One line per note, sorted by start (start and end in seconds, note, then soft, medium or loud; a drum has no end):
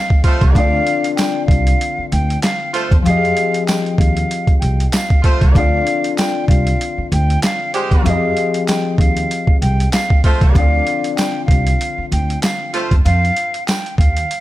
0.00 0.60 F3 medium
0.00 0.53 C4 medium
0.00 0.51 G4 medium
0.00 0.52 G#4 medium
0.00 0.58 D#5 medium
0.00 0.21 F5 medium
0.10 kick loud
0.24 0.66 A3 loud
0.24 0.66 F4 loud
0.24 0.66 C5 loud
0.24 kick medium
0.24 closed hi-hat medium
0.41 0.52 C2 medium
0.41 kick medium
0.41 closed hi-hat medium
0.52 0.79 D2 loud
0.52 3.10 D3 medium
0.52 3.04 C4 medium
0.52 3.16 D4 medium
0.52 1.14 F5 loud
0.52 kick loud
0.56 3.10 F4 medium
0.56 3.03 D5 medium
0.56 closed hi-hat medium
0.87 closed hi-hat medium
1.04 closed hi-hat medium
1.16 1.45 G5 medium
1.16 snare loud
1.16 clap medium
1.16 closed hi-hat medium
1.16 tambourine medium
1.46 1.72 C2 medium
1.46 2.06 F5 medium
1.46 kick loud
1.51 closed hi-hat medium
1.67 closed hi-hat medium
1.81 closed hi-hat loud
1.98 muted upright bass stroke soft
2.12 2.35 D2 loud
2.12 2.40 G5 medium
2.12 closed hi-hat medium
2.30 closed hi-hat medium
2.42 2.71 F5 medium
2.42 snare loud
2.42 clap medium
2.42 closed hi-hat loud
2.42 tambourine medium
2.74 2.94 A3 loud
2.74 2.94 F4 loud
2.74 2.94 C5 loud
2.74 closed hi-hat medium
2.91 3.02 E2 medium
2.91 kick medium
2.91 closed hi-hat medium
3.02 3.29 F2 loud
3.02 5.60 F3 medium
3.02 5.53 C4 medium
3.02 5.52 G4 medium
3.02 3.64 F5 loud
3.06 5.53 G#4 medium
3.06 5.58 D#5 medium
3.06 closed hi-hat medium
3.25 closed hi-hat soft
3.37 closed hi-hat medium
3.54 closed hi-hat medium
3.67 3.95 G5 medium
3.67 snare loud
3.67 clap medium
3.67 closed hi-hat medium
3.67 tambourine medium
3.86 closed hi-hat soft
3.98 4.22 D#2 medium
3.98 4.57 F5 medium
3.98 kick loud
3.98 closed hi-hat medium
4.17 closed hi-hat medium
4.31 closed hi-hat loud
4.47 muted upright bass stroke soft
4.47 kick medium
4.47 closed hi-hat soft
4.59 4.85 C2 medium
4.59 4.88 G5 medium
4.59 closed hi-hat medium
4.80 closed hi-hat medium
4.92 5.21 F5 medium
4.92 snare loud
4.92 clap medium
4.92 closed hi-hat loud
4.92 tambourine medium
5.10 kick loud
5.10 closed hi-hat soft
5.23 5.65 A3 medium
5.23 5.64 F4 medium
5.23 5.64 C5 loud
5.23 kick medium
5.23 closed hi-hat medium
5.41 5.52 C2 medium
5.41 kick medium
5.41 closed hi-hat medium
5.52 5.79 D2 loud
5.52 8.10 D3 medium
5.52 8.03 C4 medium
5.52 8.16 D4 medium
5.52 6.14 F5 loud
5.52 kick loud
5.56 8.10 F4 medium
5.56 8.03 D5 medium
5.56 closed hi-hat medium
5.87 closed hi-hat medium
6.04 closed hi-hat medium
6.17 6.46 G5 medium
6.17 snare loud
6.17 clap medium
6.17 closed hi-hat medium
6.17 tambourine medium
6.48 6.72 C2 medium
6.48 7.08 F5 medium
6.48 kick medium
6.48 closed hi-hat medium
6.67 closed hi-hat medium
6.81 closed hi-hat loud
6.98 muted upright bass stroke soft
7.12 7.35 D2 loud
7.12 7.40 G5 medium
7.12 closed hi-hat medium
7.30 closed hi-hat medium
7.42 7.72 F5 medium
7.42 snare loud
7.42 clap medium
7.42 closed hi-hat loud
7.42 tambourine medium
7.74 8.15 G#3 loud
7.74 8.15 G4 loud
7.74 8.15 C5 loud
7.74 closed hi-hat medium
7.91 8.02 E2 medium
7.91 kick medium
7.91 closed hi-hat medium
8.02 8.29 F2 loud
8.02 10.60 F3 medium
8.02 10.53 C4 medium
8.02 10.52 G4 medium
8.02 8.64 F5 loud
8.06 10.52 G#4 medium
8.06 10.58 D#5 medium
8.06 closed hi-hat medium
8.37 closed hi-hat medium
8.54 closed hi-hat medium
8.67 8.96 G5 medium
8.67 snare loud
8.67 clap medium
8.67 closed hi-hat medium
8.67 tambourine medium
8.98 9.22 D#2 medium
8.98 9.58 F5 medium
8.98 kick medium
8.98 closed hi-hat medium
9.17 closed hi-hat medium
9.31 closed hi-hat medium
9.47 muted upright bass stroke soft
9.47 kick medium
9.61 9.85 C2 medium
9.61 9.89 G5 medium
9.61 closed hi-hat medium
9.80 closed hi-hat medium
9.92 10.21 F5 loud
9.92 snare loud
9.92 clap medium
9.92 closed hi-hat loud
9.92 tambourine medium
10.10 kick loud
10.24 10.65 A3 loud
10.24 10.66 F4 loud
10.24 10.66 C5 loud
10.24 kick medium
10.24 closed hi-hat medium
10.41 10.52 C2 medium
10.41 kick medium
10.41 closed hi-hat medium
10.52 10.79 D2 loud
10.52 13.10 D3 medium
10.52 13.54 C4 medium
10.52 13.36 D4 medium
10.52 11.14 F5 loud
10.52 kick loud
10.56 13.10 F4 medium
10.56 13.03 D5 medium
10.56 closed hi-hat medium
10.87 closed hi-hat medium
11.04 closed hi-hat medium
11.16 11.45 G5 medium
11.16 snare loud
11.16 clap medium
11.16 closed hi-hat medium
11.16 tambourine medium
11.46 11.72 C2 medium
11.46 12.06 F5 medium
11.46 kick medium
11.51 closed hi-hat medium
11.67 closed hi-hat medium
11.81 closed hi-hat medium
11.98 muted upright bass stroke soft
12.12 12.35 D2 medium
12.12 12.40 G5 medium
12.12 closed hi-hat medium
12.30 closed hi-hat medium
12.42 12.71 F5 medium
12.42 snare loud
12.42 clap medium
12.42 closed hi-hat loud
12.42 tambourine medium
12.74 12.94 A3 medium
12.74 12.94 F4 loud
12.74 12.94 C5 loud
12.74 closed hi-hat medium
12.91 13.02 E2 medium
12.91 kick medium
12.91 closed hi-hat medium
13.05 13.29 F2 loud
13.05 13.64 F5 loud
13.05 closed hi-hat medium
13.25 closed hi-hat soft
13.37 closed hi-hat medium
13.54 closed hi-hat medium
13.67 13.95 G5 medium
13.67 snare loud
13.67 clap medium
13.67 closed hi-hat medium
13.67 tambourine medium
13.86 closed hi-hat soft
13.98 14.22 D#2 medium
13.98 14.40 F5 medium
13.98 kick medium
13.98 closed hi-hat medium
14.17 closed hi-hat medium
14.31 closed hi-hat medium